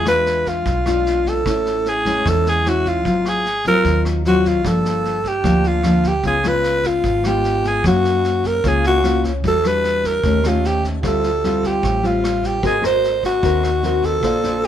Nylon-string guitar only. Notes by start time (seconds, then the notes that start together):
Already playing: E3
0.06 G#3 D4 F4
0.66 B2
0.86 G#3 D4 F4
1.46 A2 C#4 E4
2.06 G#3 C#4 E4
2.26 E3
2.66 G#3 C#4 E4
3.06 G#2 F#3 C4 F4
3.66 F#3 C4 F4
3.85 D#3
4.26 F#3 C4 F4
4.64 G2 F3 A#3 D4
5.43 D3 F3 A#3 D4
5.84 F3 A#3 D4
6.24 C#3 G#3 B3 F4
6.45 G#3 B3 F4
7.05 G#2
7.25 G#3 B3 F4
7.85 F#3 A#3 C#4
8.64 C#3 A#3 C#4 F4
9.03 A#3 C#4 F4
9.44 E3 G3 D4 F#4
9.65 G3 D4 F#4
10.24 D#3 A3 C#4 G4
10.44 A3 C#4 G4
11.03 D3 G3 C4 F4
11.44 G3 C4 F4
11.82 A2
12.03 G3 C4 F4
12.63 G#3 C4 F#4 A#4
12.81 C4 F#4 A#4
13.43 D#3 C4 F#4 A#4
13.83 C4 F#4 A#4
14.22 A#3 D4 A4 C5
14.44 D4 A4 C5